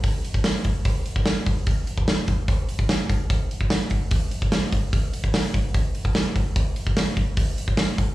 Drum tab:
HH |o-o-o-o-o-o-o-o-|o-o-o-o-o-o-o-o-|o-o-o-o-o-o-o-o-|o-o-o-o-o-o-o-o-|
SD |----o-------o---|----o-------o---|----o-------o---|----o-------o---|
BD |o--o--o-o--o--o-|o--o--o-o--o--o-|o--o--o-o--o--o-|o--o--o-o--o--o-|

HH |o-o-o-o-o-o-o-o-|
SD |----o-------o---|
BD |o--o--o-o--o--o-|